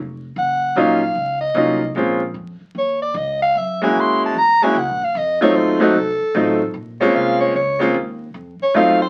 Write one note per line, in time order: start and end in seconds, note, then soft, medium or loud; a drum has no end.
0.00 0.34 F1 loud
0.36 0.75 F#1 medium
0.36 0.80 F#5 medium
0.76 1.14 A#1 medium
0.76 0.99 F#3 medium
0.76 0.99 A#3 medium
0.76 0.99 C#4 medium
0.76 0.99 D#4 medium
0.76 1.00 F4 medium
0.76 1.40 F5 medium
1.15 1.54 C#2 medium
1.41 1.91 D#5 medium
1.54 1.94 C2 loud
1.54 1.78 F#3 medium
1.54 1.78 A#3 medium
1.54 1.79 C#4 medium
1.54 1.79 D#4 medium
1.54 1.79 F4 medium
1.95 2.33 A#1 medium
1.95 2.19 G#3 medium
1.95 2.19 A#3 soft
1.95 2.19 C4 medium
1.95 2.19 C#4 soft
1.95 2.19 F4 medium
2.34 2.58 F2 medium
2.61 muted upright bass stroke soft
2.75 3.14 D#2 medium
2.75 3.01 C#5 medium
3.02 3.18 D5 medium
3.14 3.54 C#2 medium
3.14 3.42 D#5 medium
3.42 3.59 F5 loud
3.55 3.94 F#2 medium
3.55 3.82 E5 medium
3.82 4.33 G#3 medium
3.82 4.33 A#3 medium
3.82 4.33 C#4 medium
3.82 4.34 E4 medium
3.82 4.34 F#4 medium
3.82 4.02 G#5 medium
3.95 4.34 D#2 medium
4.00 4.23 C6 loud
4.26 4.40 A5 medium
4.34 4.58 E2 medium
4.34 4.65 A#5 loud
4.61 4.74 G#3 medium
4.61 4.75 A#3 medium
4.61 4.75 C#4 medium
4.61 4.75 E4 medium
4.61 4.75 F#4 medium
4.61 4.80 G#5 medium
4.61 muted upright bass stroke soft
4.75 4.88 C#2 loud
4.75 5.06 F#5 medium
4.88 5.01 A#1 medium
5.02 5.14 F#1 medium
5.02 5.19 F5 medium
5.15 5.54 F2 medium
5.15 5.42 D#5 medium
5.41 5.78 F#3 medium
5.41 5.78 A3 medium
5.41 5.79 C4 medium
5.41 5.79 D#4 medium
5.41 5.79 F4 medium
5.41 5.57 C#5 medium
5.55 5.94 D#2 medium
5.55 5.81 C5 medium
5.80 5.93 F#3 medium
5.80 5.93 A3 medium
5.80 5.94 C4 medium
5.80 5.94 D#4 medium
5.80 5.94 F#4 medium
5.80 6.72 A4 medium
5.95 6.19 C2 medium
6.20 muted upright bass stroke soft
6.35 6.73 A1 loud
6.35 6.58 F#3 medium
6.35 6.58 A3 medium
6.35 6.58 C4 medium
6.35 6.58 D#4 medium
6.35 6.59 F4 medium
6.74 7.13 A#1 medium
7.01 7.52 G#3 medium
7.01 7.52 A#3 medium
7.01 7.52 C4 medium
7.01 7.53 C#4 medium
7.01 7.53 F4 medium
7.01 7.17 C#5 medium
7.14 7.53 C2 medium
7.14 7.40 F5 loud
7.40 7.54 C#5 medium
7.54 7.94 C#2 medium
7.54 7.93 C#5 medium
7.79 7.93 G#3 medium
7.79 7.93 A#3 medium
7.79 7.93 C4 medium
7.79 7.94 C#4 medium
7.79 7.94 F4 medium
7.94 8.33 D#2 loud
8.34 8.58 F2 medium
8.60 8.77 C#5 medium
8.60 muted upright bass stroke soft
8.74 9.09 F#2 medium
8.74 8.98 F#3 medium
8.74 8.98 A3 medium
8.74 8.98 C4 medium
8.74 8.98 D#4 medium
8.74 8.99 F4 medium
8.74 9.01 F5 loud
9.02 9.09 C5 medium